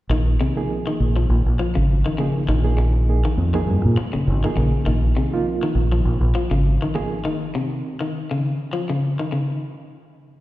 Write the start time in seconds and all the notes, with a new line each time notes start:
0.10 A#1 D#3
0.40 C3 D#4 G#4
0.57 F3 A#3 D#4 G#4
0.87 D#3
1.00 A#1
1.16 F3
1.30 A#1
1.46 A#1
1.59 F3
1.75 G#1 C#3
2.06 D#3
2.18 C#3 F3 A#3 D#4 G#4
2.49 A#1 D#3
2.64 F3 A#3 D#4 G#4
2.78 muted clean electric guitar stroke
3.08 F3 A#3 D#4 G#4
3.25 D#3
3.38 F2
3.54 F3 A#3 D#4 G#4
3.67 G2
3.85 A#2
3.97 muted clean electric guitar stroke
4.13 C#3, muted fingered electric bass stroke
4.27 G#1
4.44 D#3 F3 A#3 D#4 G#4
4.57 A#1 C#3
4.86 A#1 D#3
5.17 C3 D#4 G#4
5.33 F3 A#3 D#4 F4
5.63 D#3
5.75 A#1
5.92 F3
6.05 A#1
6.21 A#1
6.35 F3
6.51 G#1 C#3
6.82 D#3
6.94 F3 A#3 D#4 G#4, muted clean electric guitar stroke
7.25 D#3
7.55 C3
8.01 D#3
8.31 C#3
8.73 F3
8.90 C#3
9.19 D#3
9.32 C#3